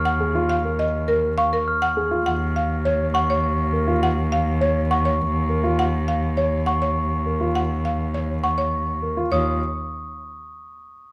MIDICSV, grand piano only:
0, 0, Header, 1, 2, 480
1, 0, Start_track
1, 0, Tempo, 588235
1, 405, Time_signature, 3, 2, 24, 8
1, 9076, End_track
2, 0, Start_track
2, 0, Title_t, "Grand piano"
2, 0, Program_c, 0, 0
2, 167, Note_on_c, 0, 68, 51
2, 287, Note_on_c, 0, 65, 73
2, 321, Note_off_c, 0, 68, 0
2, 441, Note_off_c, 0, 65, 0
2, 527, Note_on_c, 0, 70, 53
2, 681, Note_off_c, 0, 70, 0
2, 886, Note_on_c, 0, 70, 59
2, 1041, Note_off_c, 0, 70, 0
2, 1607, Note_on_c, 0, 68, 53
2, 1723, Note_on_c, 0, 65, 68
2, 1761, Note_off_c, 0, 68, 0
2, 1880, Note_off_c, 0, 65, 0
2, 2327, Note_on_c, 0, 73, 60
2, 2481, Note_off_c, 0, 73, 0
2, 3042, Note_on_c, 0, 70, 54
2, 3162, Note_on_c, 0, 65, 72
2, 3200, Note_off_c, 0, 70, 0
2, 3320, Note_off_c, 0, 65, 0
2, 3761, Note_on_c, 0, 73, 62
2, 3919, Note_off_c, 0, 73, 0
2, 4482, Note_on_c, 0, 70, 56
2, 4600, Note_on_c, 0, 65, 72
2, 4639, Note_off_c, 0, 70, 0
2, 4759, Note_off_c, 0, 65, 0
2, 5202, Note_on_c, 0, 73, 59
2, 5359, Note_off_c, 0, 73, 0
2, 5924, Note_on_c, 0, 70, 49
2, 6044, Note_on_c, 0, 65, 65
2, 6080, Note_off_c, 0, 70, 0
2, 6200, Note_off_c, 0, 65, 0
2, 6645, Note_on_c, 0, 73, 52
2, 6801, Note_off_c, 0, 73, 0
2, 7363, Note_on_c, 0, 70, 43
2, 7484, Note_on_c, 0, 65, 61
2, 7520, Note_off_c, 0, 70, 0
2, 7589, Note_off_c, 0, 65, 0
2, 7601, Note_on_c, 0, 65, 57
2, 7826, Note_off_c, 0, 65, 0
2, 9076, End_track
0, 0, End_of_file